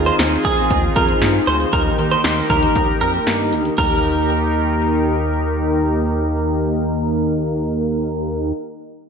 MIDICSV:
0, 0, Header, 1, 6, 480
1, 0, Start_track
1, 0, Key_signature, -3, "major"
1, 0, Tempo, 512821
1, 1619, Time_signature, 4, 2, 24, 8
1, 8511, End_track
2, 0, Start_track
2, 0, Title_t, "Clean electric guitar"
2, 0, Program_c, 0, 27
2, 59, Note_on_c, 0, 72, 75
2, 143, Note_off_c, 0, 72, 0
2, 420, Note_on_c, 0, 68, 79
2, 758, Note_off_c, 0, 68, 0
2, 899, Note_on_c, 0, 70, 74
2, 983, Note_off_c, 0, 70, 0
2, 1379, Note_on_c, 0, 72, 76
2, 1463, Note_off_c, 0, 72, 0
2, 1619, Note_on_c, 0, 70, 99
2, 1703, Note_off_c, 0, 70, 0
2, 1980, Note_on_c, 0, 72, 77
2, 2064, Note_off_c, 0, 72, 0
2, 2340, Note_on_c, 0, 70, 74
2, 2678, Note_off_c, 0, 70, 0
2, 2820, Note_on_c, 0, 70, 78
2, 2903, Note_off_c, 0, 70, 0
2, 3540, Note_on_c, 0, 70, 76
2, 4942, Note_off_c, 0, 70, 0
2, 8511, End_track
3, 0, Start_track
3, 0, Title_t, "Analog polysynth"
3, 0, Program_c, 1, 90
3, 0, Note_on_c, 1, 60, 73
3, 0, Note_on_c, 1, 65, 69
3, 0, Note_on_c, 1, 68, 65
3, 0, Note_on_c, 1, 72, 82
3, 1582, Note_off_c, 1, 60, 0
3, 1582, Note_off_c, 1, 65, 0
3, 1582, Note_off_c, 1, 68, 0
3, 1582, Note_off_c, 1, 72, 0
3, 1620, Note_on_c, 1, 58, 72
3, 1620, Note_on_c, 1, 63, 67
3, 1620, Note_on_c, 1, 67, 67
3, 1620, Note_on_c, 1, 70, 79
3, 3502, Note_off_c, 1, 58, 0
3, 3502, Note_off_c, 1, 63, 0
3, 3502, Note_off_c, 1, 67, 0
3, 3502, Note_off_c, 1, 70, 0
3, 3539, Note_on_c, 1, 58, 76
3, 3539, Note_on_c, 1, 63, 73
3, 3539, Note_on_c, 1, 67, 69
3, 3539, Note_on_c, 1, 70, 84
3, 7977, Note_off_c, 1, 58, 0
3, 7977, Note_off_c, 1, 63, 0
3, 7977, Note_off_c, 1, 67, 0
3, 7977, Note_off_c, 1, 70, 0
3, 8511, End_track
4, 0, Start_track
4, 0, Title_t, "Analog synth pad"
4, 0, Program_c, 2, 89
4, 0, Note_on_c, 2, 51, 77
4, 0, Note_on_c, 2, 63, 70
4, 0, Note_on_c, 2, 65, 71
4, 0, Note_on_c, 2, 68, 83
4, 1600, Note_off_c, 2, 65, 0
4, 1600, Note_off_c, 2, 68, 0
4, 1620, Note_on_c, 2, 67, 71
4, 1620, Note_on_c, 2, 70, 84
4, 3502, Note_off_c, 2, 51, 0
4, 3502, Note_off_c, 2, 63, 0
4, 3520, Note_off_c, 2, 67, 0
4, 3521, Note_off_c, 2, 70, 0
4, 3539, Note_on_c, 2, 51, 74
4, 3539, Note_on_c, 2, 63, 68
4, 3539, Note_on_c, 2, 67, 66
4, 3539, Note_on_c, 2, 70, 84
4, 7977, Note_off_c, 2, 51, 0
4, 7977, Note_off_c, 2, 63, 0
4, 7977, Note_off_c, 2, 67, 0
4, 7977, Note_off_c, 2, 70, 0
4, 8511, End_track
5, 0, Start_track
5, 0, Title_t, "Analog synth bass"
5, 0, Program_c, 3, 38
5, 0, Note_on_c, 3, 39, 100
5, 108, Note_off_c, 3, 39, 0
5, 180, Note_on_c, 3, 39, 104
5, 348, Note_off_c, 3, 39, 0
5, 418, Note_on_c, 3, 39, 99
5, 587, Note_off_c, 3, 39, 0
5, 660, Note_on_c, 3, 39, 105
5, 828, Note_off_c, 3, 39, 0
5, 900, Note_on_c, 3, 41, 91
5, 1068, Note_off_c, 3, 41, 0
5, 1140, Note_on_c, 3, 43, 86
5, 1308, Note_off_c, 3, 43, 0
5, 1379, Note_on_c, 3, 38, 93
5, 1548, Note_off_c, 3, 38, 0
5, 1619, Note_on_c, 3, 39, 108
5, 1787, Note_off_c, 3, 39, 0
5, 1859, Note_on_c, 3, 39, 98
5, 2027, Note_off_c, 3, 39, 0
5, 2100, Note_on_c, 3, 39, 99
5, 2268, Note_off_c, 3, 39, 0
5, 2339, Note_on_c, 3, 39, 98
5, 2507, Note_off_c, 3, 39, 0
5, 2581, Note_on_c, 3, 39, 111
5, 2748, Note_off_c, 3, 39, 0
5, 2820, Note_on_c, 3, 41, 91
5, 2988, Note_off_c, 3, 41, 0
5, 3059, Note_on_c, 3, 43, 88
5, 3299, Note_on_c, 3, 38, 89
5, 3314, Note_off_c, 3, 43, 0
5, 3468, Note_off_c, 3, 38, 0
5, 3540, Note_on_c, 3, 39, 96
5, 7978, Note_off_c, 3, 39, 0
5, 8511, End_track
6, 0, Start_track
6, 0, Title_t, "Drums"
6, 59, Note_on_c, 9, 42, 54
6, 153, Note_off_c, 9, 42, 0
6, 179, Note_on_c, 9, 38, 114
6, 179, Note_on_c, 9, 42, 77
6, 272, Note_off_c, 9, 38, 0
6, 273, Note_off_c, 9, 42, 0
6, 418, Note_on_c, 9, 36, 97
6, 419, Note_on_c, 9, 42, 69
6, 512, Note_off_c, 9, 36, 0
6, 513, Note_off_c, 9, 42, 0
6, 539, Note_on_c, 9, 42, 58
6, 633, Note_off_c, 9, 42, 0
6, 657, Note_on_c, 9, 42, 74
6, 660, Note_on_c, 9, 36, 93
6, 751, Note_off_c, 9, 42, 0
6, 754, Note_off_c, 9, 36, 0
6, 897, Note_on_c, 9, 42, 68
6, 900, Note_on_c, 9, 36, 96
6, 990, Note_off_c, 9, 42, 0
6, 994, Note_off_c, 9, 36, 0
6, 1017, Note_on_c, 9, 42, 42
6, 1110, Note_off_c, 9, 42, 0
6, 1138, Note_on_c, 9, 38, 107
6, 1140, Note_on_c, 9, 42, 69
6, 1232, Note_off_c, 9, 38, 0
6, 1234, Note_off_c, 9, 42, 0
6, 1381, Note_on_c, 9, 42, 76
6, 1474, Note_off_c, 9, 42, 0
6, 1498, Note_on_c, 9, 42, 52
6, 1592, Note_off_c, 9, 42, 0
6, 1619, Note_on_c, 9, 36, 104
6, 1620, Note_on_c, 9, 42, 68
6, 1713, Note_off_c, 9, 36, 0
6, 1714, Note_off_c, 9, 42, 0
6, 1860, Note_on_c, 9, 42, 65
6, 1954, Note_off_c, 9, 42, 0
6, 1980, Note_on_c, 9, 42, 55
6, 2073, Note_off_c, 9, 42, 0
6, 2099, Note_on_c, 9, 38, 109
6, 2099, Note_on_c, 9, 42, 77
6, 2192, Note_off_c, 9, 38, 0
6, 2193, Note_off_c, 9, 42, 0
6, 2339, Note_on_c, 9, 36, 95
6, 2340, Note_on_c, 9, 42, 70
6, 2432, Note_off_c, 9, 36, 0
6, 2433, Note_off_c, 9, 42, 0
6, 2459, Note_on_c, 9, 42, 57
6, 2553, Note_off_c, 9, 42, 0
6, 2578, Note_on_c, 9, 42, 70
6, 2581, Note_on_c, 9, 36, 90
6, 2671, Note_off_c, 9, 42, 0
6, 2674, Note_off_c, 9, 36, 0
6, 2818, Note_on_c, 9, 42, 67
6, 2911, Note_off_c, 9, 42, 0
6, 2937, Note_on_c, 9, 42, 41
6, 3031, Note_off_c, 9, 42, 0
6, 3059, Note_on_c, 9, 38, 99
6, 3061, Note_on_c, 9, 42, 69
6, 3153, Note_off_c, 9, 38, 0
6, 3154, Note_off_c, 9, 42, 0
6, 3301, Note_on_c, 9, 42, 73
6, 3395, Note_off_c, 9, 42, 0
6, 3419, Note_on_c, 9, 42, 52
6, 3513, Note_off_c, 9, 42, 0
6, 3540, Note_on_c, 9, 36, 98
6, 3540, Note_on_c, 9, 49, 76
6, 3634, Note_off_c, 9, 36, 0
6, 3634, Note_off_c, 9, 49, 0
6, 8511, End_track
0, 0, End_of_file